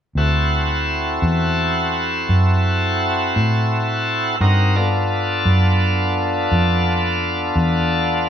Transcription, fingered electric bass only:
0, 0, Header, 1, 2, 480
1, 0, Start_track
1, 0, Tempo, 704225
1, 117, Time_signature, 12, 3, 24, 8
1, 5650, End_track
2, 0, Start_track
2, 0, Title_t, "Fingered electric bass"
2, 0, Program_c, 0, 33
2, 104, Note_on_c, 0, 38, 63
2, 809, Note_off_c, 0, 38, 0
2, 833, Note_on_c, 0, 40, 66
2, 1534, Note_off_c, 0, 40, 0
2, 1562, Note_on_c, 0, 42, 60
2, 2258, Note_off_c, 0, 42, 0
2, 2291, Note_on_c, 0, 45, 64
2, 2983, Note_off_c, 0, 45, 0
2, 3003, Note_on_c, 0, 43, 67
2, 3698, Note_off_c, 0, 43, 0
2, 3717, Note_on_c, 0, 42, 76
2, 4415, Note_off_c, 0, 42, 0
2, 4441, Note_on_c, 0, 41, 62
2, 5136, Note_off_c, 0, 41, 0
2, 5150, Note_on_c, 0, 40, 67
2, 5650, Note_off_c, 0, 40, 0
2, 5650, End_track
0, 0, End_of_file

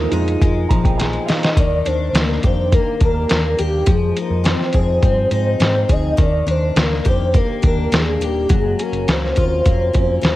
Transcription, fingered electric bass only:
0, 0, Header, 1, 2, 480
1, 0, Start_track
1, 0, Key_signature, -3, "major"
1, 0, Tempo, 577478
1, 1302, Time_signature, 4, 2, 24, 8
1, 8610, End_track
2, 0, Start_track
2, 0, Title_t, "Fingered electric bass"
2, 0, Program_c, 0, 33
2, 98, Note_on_c, 0, 41, 91
2, 292, Note_off_c, 0, 41, 0
2, 348, Note_on_c, 0, 41, 76
2, 537, Note_off_c, 0, 41, 0
2, 586, Note_on_c, 0, 34, 78
2, 968, Note_off_c, 0, 34, 0
2, 1305, Note_on_c, 0, 39, 109
2, 1495, Note_off_c, 0, 39, 0
2, 1547, Note_on_c, 0, 39, 81
2, 1736, Note_off_c, 0, 39, 0
2, 1771, Note_on_c, 0, 38, 86
2, 1967, Note_off_c, 0, 38, 0
2, 2028, Note_on_c, 0, 41, 71
2, 2313, Note_off_c, 0, 41, 0
2, 2504, Note_on_c, 0, 39, 79
2, 2695, Note_off_c, 0, 39, 0
2, 2750, Note_on_c, 0, 39, 82
2, 2939, Note_off_c, 0, 39, 0
2, 2987, Note_on_c, 0, 39, 77
2, 3177, Note_off_c, 0, 39, 0
2, 3222, Note_on_c, 0, 41, 94
2, 3414, Note_off_c, 0, 41, 0
2, 3576, Note_on_c, 0, 41, 87
2, 3770, Note_off_c, 0, 41, 0
2, 3949, Note_on_c, 0, 41, 91
2, 4138, Note_off_c, 0, 41, 0
2, 4179, Note_on_c, 0, 43, 79
2, 4372, Note_off_c, 0, 43, 0
2, 4415, Note_on_c, 0, 44, 77
2, 4610, Note_off_c, 0, 44, 0
2, 4655, Note_on_c, 0, 44, 88
2, 4850, Note_off_c, 0, 44, 0
2, 4899, Note_on_c, 0, 38, 80
2, 5092, Note_off_c, 0, 38, 0
2, 5138, Note_on_c, 0, 39, 95
2, 5332, Note_off_c, 0, 39, 0
2, 5374, Note_on_c, 0, 39, 91
2, 5569, Note_off_c, 0, 39, 0
2, 5618, Note_on_c, 0, 38, 81
2, 5812, Note_off_c, 0, 38, 0
2, 5866, Note_on_c, 0, 41, 81
2, 6153, Note_off_c, 0, 41, 0
2, 6348, Note_on_c, 0, 39, 85
2, 6538, Note_off_c, 0, 39, 0
2, 6582, Note_on_c, 0, 39, 90
2, 6775, Note_off_c, 0, 39, 0
2, 6816, Note_on_c, 0, 27, 69
2, 7011, Note_off_c, 0, 27, 0
2, 7070, Note_on_c, 0, 30, 108
2, 7259, Note_off_c, 0, 30, 0
2, 7416, Note_on_c, 0, 30, 87
2, 7515, Note_off_c, 0, 30, 0
2, 7545, Note_on_c, 0, 37, 94
2, 7737, Note_off_c, 0, 37, 0
2, 7791, Note_on_c, 0, 39, 71
2, 7980, Note_off_c, 0, 39, 0
2, 8032, Note_on_c, 0, 41, 81
2, 8221, Note_off_c, 0, 41, 0
2, 8267, Note_on_c, 0, 41, 77
2, 8458, Note_off_c, 0, 41, 0
2, 8505, Note_on_c, 0, 39, 88
2, 8610, Note_off_c, 0, 39, 0
2, 8610, End_track
0, 0, End_of_file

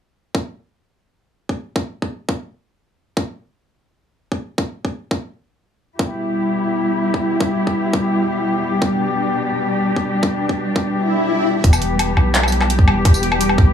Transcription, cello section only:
0, 0, Header, 1, 2, 480
1, 0, Start_track
1, 0, Key_signature, 1, "minor"
1, 0, Tempo, 352941
1, 471, Time_signature, 4, 2, 24, 8
1, 18677, End_track
2, 0, Start_track
2, 0, Title_t, "Cello section"
2, 0, Program_c, 0, 48
2, 8147, Note_on_c, 0, 55, 64
2, 8149, Note_on_c, 0, 64, 64
2, 8151, Note_on_c, 0, 47, 70
2, 8152, Note_on_c, 0, 67, 76
2, 11952, Note_off_c, 0, 64, 0
2, 11991, Note_on_c, 0, 62, 65
2, 15775, Note_off_c, 0, 55, 0
2, 15777, Note_off_c, 0, 47, 0
2, 15777, Note_off_c, 0, 67, 0
2, 15793, Note_off_c, 0, 62, 0
2, 15829, Note_on_c, 0, 67, 83
2, 15830, Note_on_c, 0, 52, 78
2, 15830, Note_on_c, 0, 55, 70
2, 15831, Note_on_c, 0, 59, 70
2, 18677, Note_off_c, 0, 52, 0
2, 18677, Note_off_c, 0, 55, 0
2, 18677, Note_off_c, 0, 59, 0
2, 18677, Note_off_c, 0, 67, 0
2, 18677, End_track
0, 0, End_of_file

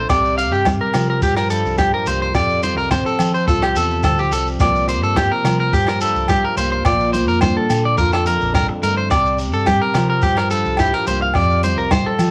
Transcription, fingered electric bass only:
0, 0, Header, 1, 2, 480
1, 0, Start_track
1, 0, Tempo, 562852
1, 84, Time_signature, 4, 2, 24, 8
1, 10495, End_track
2, 0, Start_track
2, 0, Title_t, "Fingered electric bass"
2, 0, Program_c, 0, 33
2, 83, Note_on_c, 0, 36, 72
2, 452, Note_off_c, 0, 36, 0
2, 452, Note_on_c, 0, 43, 84
2, 674, Note_off_c, 0, 43, 0
2, 805, Note_on_c, 0, 48, 83
2, 1029, Note_off_c, 0, 48, 0
2, 1044, Note_on_c, 0, 43, 95
2, 1385, Note_off_c, 0, 43, 0
2, 1408, Note_on_c, 0, 36, 77
2, 1633, Note_off_c, 0, 36, 0
2, 1768, Note_on_c, 0, 36, 77
2, 1990, Note_off_c, 0, 36, 0
2, 2002, Note_on_c, 0, 41, 73
2, 2370, Note_off_c, 0, 41, 0
2, 2370, Note_on_c, 0, 36, 78
2, 2594, Note_off_c, 0, 36, 0
2, 2722, Note_on_c, 0, 53, 79
2, 2947, Note_off_c, 0, 53, 0
2, 2964, Note_on_c, 0, 36, 94
2, 3188, Note_off_c, 0, 36, 0
2, 3201, Note_on_c, 0, 40, 78
2, 3418, Note_off_c, 0, 40, 0
2, 3444, Note_on_c, 0, 38, 83
2, 3660, Note_off_c, 0, 38, 0
2, 3675, Note_on_c, 0, 36, 78
2, 3895, Note_off_c, 0, 36, 0
2, 3924, Note_on_c, 0, 36, 75
2, 4282, Note_off_c, 0, 36, 0
2, 4282, Note_on_c, 0, 43, 72
2, 4509, Note_off_c, 0, 43, 0
2, 4641, Note_on_c, 0, 48, 90
2, 4866, Note_off_c, 0, 48, 0
2, 4888, Note_on_c, 0, 43, 87
2, 5227, Note_off_c, 0, 43, 0
2, 5245, Note_on_c, 0, 36, 73
2, 5471, Note_off_c, 0, 36, 0
2, 5602, Note_on_c, 0, 36, 79
2, 5827, Note_off_c, 0, 36, 0
2, 5848, Note_on_c, 0, 34, 77
2, 6208, Note_off_c, 0, 34, 0
2, 6208, Note_on_c, 0, 41, 87
2, 6432, Note_off_c, 0, 41, 0
2, 6566, Note_on_c, 0, 46, 75
2, 6789, Note_off_c, 0, 46, 0
2, 6809, Note_on_c, 0, 41, 104
2, 7147, Note_off_c, 0, 41, 0
2, 7178, Note_on_c, 0, 34, 80
2, 7397, Note_off_c, 0, 34, 0
2, 7533, Note_on_c, 0, 43, 84
2, 7752, Note_off_c, 0, 43, 0
2, 7767, Note_on_c, 0, 36, 81
2, 8134, Note_off_c, 0, 36, 0
2, 8134, Note_on_c, 0, 43, 84
2, 8355, Note_off_c, 0, 43, 0
2, 8482, Note_on_c, 0, 48, 77
2, 8706, Note_off_c, 0, 48, 0
2, 8726, Note_on_c, 0, 43, 100
2, 9065, Note_off_c, 0, 43, 0
2, 9087, Note_on_c, 0, 36, 74
2, 9311, Note_off_c, 0, 36, 0
2, 9440, Note_on_c, 0, 36, 74
2, 9665, Note_off_c, 0, 36, 0
2, 9680, Note_on_c, 0, 41, 77
2, 10041, Note_off_c, 0, 41, 0
2, 10041, Note_on_c, 0, 36, 80
2, 10267, Note_off_c, 0, 36, 0
2, 10393, Note_on_c, 0, 53, 84
2, 10495, Note_off_c, 0, 53, 0
2, 10495, End_track
0, 0, End_of_file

